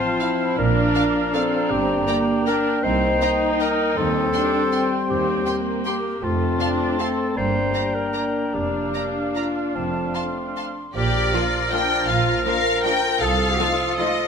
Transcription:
0.00 1.66 F3 medium
0.00 0.56 C4 medium
0.00 0.60 C4 medium
0.00 0.21 F4 medium
0.00 0.58 C5 medium
0.00 1.71 F5 medium
0.00 0.59 A5 medium
0.20 0.57 E4 medium
0.20 0.28 F5 soft
0.20 0.29 F5 soft
0.57 0.88 A#1 medium
0.57 0.89 A#2 medium
0.57 1.34 D4 medium
0.57 2.84 D4 medium
0.57 1.36 A#4 medium
0.57 2.84 A#5 medium
0.95 1.03 D5 medium
0.95 1.03 F5 medium
1.34 2.08 C4 medium
1.34 1.72 A4 medium
1.34 1.42 D5 medium
1.34 1.42 F5 medium
1.70 2.01 G1 medium
1.70 2.01 G2 medium
1.70 3.93 A#3 medium
1.70 2.47 G4 medium
1.70 3.96 G5 medium
2.08 2.47 A#3 medium
2.08 2.16 D5 medium
2.08 2.16 G5 medium
2.08 2.16 A#5 medium
2.46 2.84 D4 medium
2.46 2.85 A#4 medium
2.46 2.55 D5 soft
2.46 2.55 G5 soft
2.46 2.54 A#5 medium
2.83 3.15 C2 medium
2.83 3.21 C4 medium
2.83 3.97 D#4 medium
2.83 3.98 D#4 medium
2.83 3.52 C5 medium
2.83 3.98 A#5 medium
3.21 4.34 D#4 medium
3.21 3.30 D#5 medium
3.21 3.30 G5 medium
3.21 3.29 A#5 medium
3.53 3.62 C5 medium
3.60 3.98 A#4 medium
3.60 3.68 D#5 medium
3.60 3.68 G5 soft
3.60 3.68 A#5 medium
3.97 4.27 D#2 medium
3.97 6.05 G3 medium
3.97 6.05 C4 medium
3.97 5.96 C4 medium
3.97 4.93 A4 medium
3.97 5.92 G5 medium
3.97 5.96 C6 medium
4.34 4.72 D4 medium
4.34 4.42 G5 medium
4.34 4.42 C6 medium
4.72 5.08 C4 medium
4.72 4.81 G5 medium
4.72 4.80 C6 soft
5.09 5.40 D#2 medium
5.09 5.46 C4 medium
5.09 5.58 G4 medium
5.47 6.23 A#3 medium
5.47 5.55 G5 medium
5.47 5.55 C6 medium
5.85 6.25 G4 medium
5.85 5.94 G5 medium
5.85 5.94 C6 medium
6.22 6.54 F1 medium
6.22 6.54 F2 medium
6.22 7.34 A3 medium
6.22 6.61 A3 medium
6.22 7.34 C4 medium
6.22 7.39 C4 medium
6.22 7.02 F4 medium
6.22 7.39 A5 soft
6.22 7.38 C6 medium
6.60 6.99 D4 medium
6.60 6.68 F5 medium
6.60 6.68 A5 soft
6.60 6.68 C6 soft
6.99 7.37 C4 medium
6.99 7.36 A4 medium
6.99 7.08 F5 soft
6.99 7.07 A5 soft
6.99 7.08 C6 soft
7.37 7.68 G1 medium
7.37 7.68 G2 medium
7.37 7.74 A#3 medium
7.37 9.76 A#3 medium
7.37 9.76 D4 soft
7.37 9.77 D4 medium
7.37 7.96 C5 medium
7.37 8.54 G5 soft
7.37 8.90 A#5 soft
7.74 8.15 G3 soft
7.74 7.83 D5 soft
7.74 7.83 A#5 soft
7.95 8.56 A#4 medium
8.14 8.54 A#3 soft
8.14 8.22 D5 soft
8.14 8.22 A#5 soft
8.54 8.88 F1 medium
8.54 8.87 F2 soft
8.54 10.72 D4 soft
8.54 9.37 G4 medium
8.54 10.73 F5 soft
8.94 9.02 D5 soft
8.94 9.77 F5 soft
8.94 9.02 A#5 soft
8.94 9.03 A#5 soft
9.35 10.56 F4 soft
9.35 9.44 D5 soft
9.35 9.43 A#5 soft
9.35 9.44 A#5 soft
9.75 10.08 F1 soft
9.75 10.08 F2 soft
9.75 10.76 A3 soft
9.75 10.74 C4 soft
9.75 10.76 C4 soft
9.75 10.17 A5 soft
10.14 10.23 F5 soft
10.14 10.23 A5 soft
10.14 10.22 C6 soft
10.14 10.96 C6 soft
10.57 10.65 F5 soft
10.57 10.65 A5 soft
10.57 10.65 C6 soft
10.95 11.27 A#1 medium
10.95 13.18 F3 medium
10.95 13.18 F4 medium
10.95 11.31 G4 medium
10.95 13.23 A#4 medium
10.95 11.68 D5 medium
10.95 12.94 F6 medium
11.33 11.42 F3 medium
11.33 11.47 A#3 medium
11.33 11.47 D4 medium
11.33 11.42 D4 medium
11.33 11.72 F4 medium
11.33 11.42 F4 medium
11.33 11.42 A#4 medium
11.71 11.81 F3 medium
11.71 11.85 A#3 soft
11.71 11.85 D4 soft
11.71 11.80 D4 medium
11.71 12.09 D4 medium
11.71 11.81 F4 medium
11.71 11.81 A#4 soft
11.71 12.09 G5 medium
12.08 12.40 A#1 medium
12.08 12.46 F4 medium
12.08 12.44 F5 medium
12.45 12.54 F3 medium
12.45 12.60 A#3 medium
12.45 12.60 D4 medium
12.45 12.54 D4 medium
12.45 12.54 F4 medium
12.45 13.20 A#4 medium
12.45 12.54 A#4 medium
12.45 12.84 F5 medium
12.84 12.93 F3 medium
12.84 12.98 A#3 soft
12.84 12.98 D4 soft
12.84 12.93 D4 medium
12.84 12.93 F4 medium
12.84 12.93 A#4 soft
12.84 13.21 G5 medium
13.21 13.53 C2 medium
13.21 14.28 F3 medium
13.21 14.28 F4 medium
13.21 14.28 A4 medium
13.21 13.59 A4 medium
13.21 13.98 F5 medium
13.21 14.28 D#6 medium
13.58 13.68 F3 medium
13.58 13.73 A3 medium
13.58 13.73 D#4 medium
13.58 13.67 D#4 medium
13.58 14.28 F4 medium
13.58 13.68 F4 medium
13.58 13.67 A4 medium
13.98 14.07 F3 medium
13.98 14.12 A3 soft
13.98 14.12 D#4 medium
13.98 14.07 D#4 medium
13.98 14.07 F4 medium
13.98 14.07 A4 soft
13.98 14.28 D#5 medium

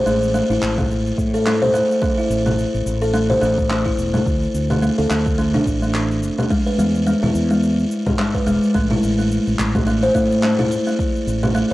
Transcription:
0.06 0.40 A1 medium
0.06 0.21 A3 loud
0.06 cabasa medium
0.23 cabasa soft
0.34 0.43 A3 medium
0.34 cabasa soft
0.49 0.57 A1 medium
0.49 0.62 E4 medium
0.49 cabasa soft
0.62 1.10 A1 medium
0.62 clap medium
0.62 cabasa medium
0.78 0.85 A3 medium
0.78 kick loud
0.78 low conga medium
0.78 cabasa soft
0.91 cabasa soft
1.07 cabasa soft
1.18 1.80 A2 medium
1.18 kick medium
1.18 cabasa medium
1.34 1.45 A4 medium
1.34 cabasa soft
1.46 1.61 A3 medium
1.46 clap medium
1.46 cabasa soft
1.62 1.69 C5 medium
1.62 low conga medium
1.62 cabasa soft
1.74 1.89 A3 medium
1.74 cabasa medium
1.91 cabasa soft
2.02 2.11 A3 loud
2.02 kick loud
2.02 cabasa soft
2.18 2.29 E4 medium
2.18 cabasa soft
2.30 2.64 A1 medium
2.30 cabasa medium
2.46 2.53 A3 medium
2.46 low conga medium
2.46 cabasa soft
2.59 cabasa soft
2.74 2.81 A1 medium
2.74 cabasa soft
2.86 3.35 A1 medium
2.86 cabasa medium
3.02 3.13 A4 medium
3.02 cabasa soft
3.14 3.28 A3 loud
3.14 cabasa soft
3.30 3.37 C5 medium
3.30 low conga medium
3.30 cabasa soft
3.42 3.91 A1 medium
3.42 3.57 A3 loud
3.42 cabasa medium
3.58 kick loud
3.58 cabasa soft
3.70 3.79 A3 medium
3.70 clap medium
3.70 cabasa soft
3.86 3.97 E4 medium
3.86 kick medium
3.86 cabasa soft
3.98 4.16 E1 medium
3.98 cabasa medium
4.14 4.22 A2 medium
4.14 4.21 A3 medium
4.14 low conga medium
4.14 cabasa soft
4.26 4.45 D2 medium
4.26 kick loud
4.26 cabasa soft
4.43 cabasa soft
4.54 4.88 D2 medium
4.54 cabasa medium
4.70 4.81 A3 medium
4.70 low conga medium
4.70 cabasa soft
4.82 4.97 A3 medium
4.82 cabasa soft
4.98 5.06 D2 medium
4.98 5.05 A4 medium
4.98 cabasa soft
5.10 5.59 D2 medium
5.10 5.26 A3 medium
5.10 clap medium
5.10 cabasa medium
5.26 kick loud
5.26 cabasa soft
5.38 5.47 A3 loud
5.38 cabasa soft
5.54 5.66 D4 medium
5.54 low conga medium
5.54 cabasa soft
5.66 6.29 A1 medium
5.66 kick medium
5.66 cabasa medium
5.82 5.89 A3 medium
5.82 cabasa soft
5.94 clap medium
5.94 cabasa soft
6.11 cabasa soft
6.23 cabasa medium
6.38 6.50 A3 medium
6.38 low conga medium
6.38 cabasa soft
6.51 6.65 G#3 medium
6.51 kick loud
6.51 cabasa soft
6.67 6.73 B4 medium
6.67 cabasa soft
6.78 7.13 E2 medium
6.78 6.94 G#3 medium
6.78 cabasa medium
6.95 cabasa soft
7.07 7.16 G#3 medium
7.07 cabasa soft
7.22 7.30 E2 medium
7.22 7.34 E4 medium
7.22 low conga medium
7.22 cabasa soft
7.35 7.83 E2 medium
7.35 cabasa medium
7.51 7.58 G#3 medium
7.51 cabasa soft
7.63 cabasa soft
7.79 cabasa soft
7.91 cabasa medium
8.07 8.39 G#2 medium
8.07 8.18 G#3 medium
8.07 kick loud
8.07 low conga medium
8.07 cabasa soft
8.19 8.33 G#3 loud
8.19 clap medium
8.19 cabasa soft
8.35 8.42 B4 medium
8.35 kick medium
8.35 cabasa soft
8.46 8.56 E1 medium
8.46 8.62 G#3 loud
8.46 cabasa medium
8.63 cabasa soft
8.75 8.94 A1 medium
8.75 8.84 A3 loud
8.75 kick loud
8.75 cabasa soft
8.91 9.02 E4 medium
8.91 low conga medium
8.91 cabasa soft
9.03 9.37 A1 medium
9.03 cabasa medium
9.19 9.26 A3 medium
9.19 cabasa soft
9.32 cabasa soft
9.47 9.54 A1 medium
9.47 cabasa soft
9.59 10.08 A1 medium
9.59 clap medium
9.59 cabasa medium
9.75 9.86 A3 medium
9.75 kick medium
9.75 low conga medium
9.75 cabasa soft
9.87 10.01 A3 loud
9.87 cabasa soft
10.03 10.10 C5 medium
10.03 cabasa soft
10.15 10.77 A2 medium
10.15 10.30 A3 loud
10.15 kick medium
10.15 cabasa medium
10.32 cabasa soft
10.43 10.52 A3 loud
10.43 clap medium
10.43 cabasa soft
10.59 10.71 E4 medium
10.59 low conga medium
10.59 cabasa soft
10.72 cabasa medium
10.87 10.94 A3 medium
10.87 cabasa soft
10.99 kick loud
10.99 cabasa soft
11.16 cabasa soft
11.27 11.61 A1 medium
11.27 cabasa medium
11.43 11.54 A3 medium
11.43 low conga medium
11.43 cabasa soft
11.55 11.69 A3 medium
11.55 cabasa soft

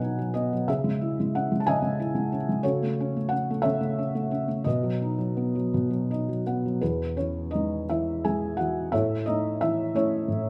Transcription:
0.00 0.70 B2 medium
0.00 0.19 F#3 soft
0.00 0.35 B3 soft
0.00 0.70 D#4 soft
0.00 0.69 F#4 soft
0.00 0.70 B4 medium
0.00 0.34 D#5 medium
0.00 0.31 F#5 medium
0.00 0.70 G#5 medium
0.19 0.51 F#3 soft
0.34 0.67 B3 soft
0.34 0.65 D#5 medium
0.53 0.68 F#3 soft
0.68 1.66 C#3 medium
0.68 1.62 G#4 medium
0.68 1.35 E5 medium
0.84 1.18 G#3 soft
1.01 1.98 E4 soft
1.20 1.50 G#3 soft
1.35 2.31 C#4 soft
1.35 1.61 F#5 medium
1.52 1.81 G#3 soft
1.60 1.66 A5 medium
1.67 2.61 C#3 medium
1.67 2.61 D#5 medium
1.67 2.60 E5 medium
1.67 2.35 G#5 medium
1.82 2.13 G#3 soft
2.00 2.62 E4 soft
2.15 2.47 G#3 soft
2.32 2.63 C#4 soft
2.49 2.64 G#3 soft
2.63 3.63 C#3 medium
2.63 3.60 F#4 medium
2.63 3.60 A4 medium
2.63 3.32 C#5 medium
2.82 3.15 A3 medium
3.00 3.31 C#4 medium
3.16 3.49 A3 soft
3.29 3.97 C#4 medium
3.29 3.64 F#5 medium
3.50 3.79 A3 medium
3.62 4.64 C#3 medium
3.62 4.62 A4 medium
3.62 4.62 C#5 medium
3.62 4.68 E5 medium
3.81 4.13 A3 soft
3.99 4.30 C#4 soft
4.15 4.47 A3 soft
4.31 4.65 C#4 soft
4.48 4.65 A3 soft
4.64 5.72 B2 medium
4.64 6.42 F#4 medium
4.64 6.42 B4 soft
4.64 6.09 D#5 medium
4.83 5.17 F#3 soft
5.02 6.09 D#4 soft
5.18 5.54 F#3 soft
5.37 6.45 B3 soft
5.55 5.89 F#3 soft
5.74 6.79 B2 medium
5.91 6.27 F#3 soft
6.11 6.80 D#4 soft
6.11 6.44 D#5 medium
6.29 6.64 F#3 soft
6.47 6.81 B3 soft
6.47 6.80 F#5 soft
6.66 6.82 F#3 soft
6.81 8.90 E2 soft
6.81 7.15 B3 soft
6.81 7.15 E4 soft
6.81 7.15 G#4 soft
6.81 7.15 B4 medium
7.17 7.89 E3 soft
7.17 7.50 C#4 soft
7.17 7.50 C#5 medium
7.51 7.85 D#4 soft
7.51 7.85 D#5 medium
7.55 8.24 G#3 soft
7.90 8.59 E3 soft
7.90 8.22 E4 medium
7.90 8.22 E5 medium
8.24 8.92 G#3 soft
8.24 8.57 G#4 medium
8.24 8.57 G#5 medium
8.57 8.93 E3 soft
8.57 8.91 F#4 medium
8.57 8.93 F#5 medium
8.92 10.27 A2 medium
8.92 9.24 E4 medium
8.92 9.24 A4 medium
8.92 9.24 C#5 medium
8.92 9.24 E5 medium
9.26 9.93 A3 soft
9.26 9.59 D#4 medium
9.26 9.61 D#5 medium
9.61 10.50 E3 soft
9.61 9.93 E4 medium
9.61 9.96 E5 medium
9.95 10.50 A3 soft
9.95 10.50 C#4 medium
9.95 10.50 E4 medium
9.95 10.50 C#5 medium
10.28 10.50 A2 soft

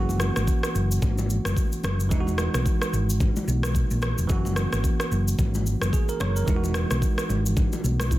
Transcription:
0.00 0.28 F#1 loud
0.00 2.06 E3 medium
0.00 2.07 A#3 medium
0.00 2.08 C#4 medium
0.00 2.09 F#4 medium
0.09 high conga medium
0.09 shaker medium
0.20 cross-stick medium
0.20 high conga medium
0.20 shaker medium
0.36 0.46 G#1 medium
0.36 cross-stick medium
0.36 shaker medium
0.48 kick medium
0.48 shaker medium
0.63 cross-stick medium
0.63 shaker medium
0.75 0.97 F#1 medium
0.75 shaker medium
0.92 shaker medium
1.02 1.37 G#1 medium
1.02 kick loud
1.02 low conga medium
1.02 shaker medium
1.18 high conga medium
1.18 shaker soft
1.30 shaker medium
1.45 1.55 F#1 medium
1.45 cross-stick medium
1.45 high conga medium
1.45 shaker medium
1.57 kick medium
1.57 shaker medium
1.72 shaker medium
1.84 2.11 F#1 medium
1.84 cross-stick medium
1.84 high conga medium
1.84 low conga medium
1.84 shaker medium
2.00 shaker medium
2.09 2.46 E1 loud
2.09 4.24 E3 medium
2.09 4.25 G#3 medium
2.09 4.26 D#4 medium
2.09 kick loud
2.09 low conga medium
2.09 shaker medium
2.14 2.20 E4 medium
2.20 4.30 F#4 medium
2.27 high conga medium
2.27 shaker medium
2.38 cross-stick medium
2.38 high conga medium
2.38 shaker medium
2.54 2.64 B1 medium
2.54 cross-stick medium
2.54 shaker medium
2.66 kick medium
2.66 shaker medium
2.82 cross-stick medium
2.82 shaker medium
2.93 3.28 G#1 loud
2.93 shaker medium
3.10 shaker loud
3.20 kick loud
3.20 low conga medium
3.20 shaker medium
3.36 high conga medium
3.36 shaker soft
3.48 3.83 B1 medium
3.48 shaker medium
3.63 cross-stick medium
3.63 high conga medium
3.63 shaker medium
3.75 kick medium
3.75 shaker medium
3.91 4.13 A#1 medium
3.91 shaker medium
4.02 cross-stick medium
4.02 high conga medium
4.02 low conga medium
4.02 shaker soft
4.18 4.27 E1 medium
4.18 shaker medium
4.27 4.65 F#1 loud
4.27 5.89 E3 medium
4.27 5.89 A#3 medium
4.27 5.90 C#4 medium
4.27 kick loud
4.27 low conga medium
4.27 shaker medium
4.32 5.91 F#4 medium
4.45 high conga medium
4.45 shaker medium
4.56 cross-stick medium
4.56 high conga medium
4.56 shaker medium
4.73 4.82 G#1 medium
4.73 cross-stick medium
4.73 shaker medium
4.84 kick medium
4.84 shaker medium
5.00 cross-stick medium
5.00 shaker medium
5.11 5.34 F#1 medium
5.11 shaker soft
5.28 shaker medium
5.39 5.74 G#1 medium
5.39 kick loud
5.39 low conga medium
5.39 shaker medium
5.54 high conga medium
5.54 shaker soft
5.66 shaker medium
5.82 5.91 F#1 medium
5.82 cross-stick medium
5.82 high conga medium
5.82 shaker medium
5.93 6.08 G#4 medium
5.93 kick medium
5.93 shaker medium
6.09 6.20 A#4 medium
6.09 shaker medium
6.20 6.43 F#1 medium
6.20 6.35 C#5 medium
6.20 cross-stick medium
6.20 high conga medium
6.20 low conga medium
6.20 shaker soft
6.36 6.62 A#4 medium
6.36 shaker medium
6.45 6.83 E1 loud
6.45 8.19 E3 medium
6.45 8.19 G#3 medium
6.45 8.08 D#4 medium
6.45 kick loud
6.45 low conga medium
6.45 shaker medium
6.50 6.56 E4 medium
6.56 8.12 F#4 medium
6.64 high conga medium
6.64 shaker medium
6.74 cross-stick medium
6.74 high conga medium
6.74 shaker medium
6.91 7.00 B1 medium
6.91 cross-stick medium
6.91 shaker medium
7.02 kick medium
7.02 shaker medium
7.18 cross-stick medium
7.18 shaker medium
7.29 7.64 G#1 medium
7.29 low conga medium
7.29 shaker soft
7.46 shaker medium
7.57 kick loud
7.57 low conga medium
7.57 shaker medium
7.72 high conga medium
7.72 shaker soft
7.84 8.19 B1 medium
7.84 shaker medium
8.00 cross-stick medium
8.00 high conga medium
8.00 shaker medium
8.11 8.19 E4 medium
8.11 kick medium
8.11 shaker medium

